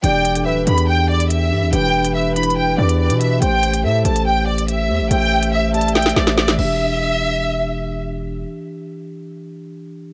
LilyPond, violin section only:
\new Staff \with { instrumentName = "Violin section" } { \time 4/4 \key e \minor \tempo 4 = 142 g''4 e''8 b''8 g''8 d''8 e''4 | g''4 e''8 b''8 g''8 d''8 d''8 e''8 | g''4 e''8 a''8 g''8 d''8 e''4 | g''4 e''8 a''8 g''8 d''8 d''8 e''8~ |
e''2. r4 | r1 | }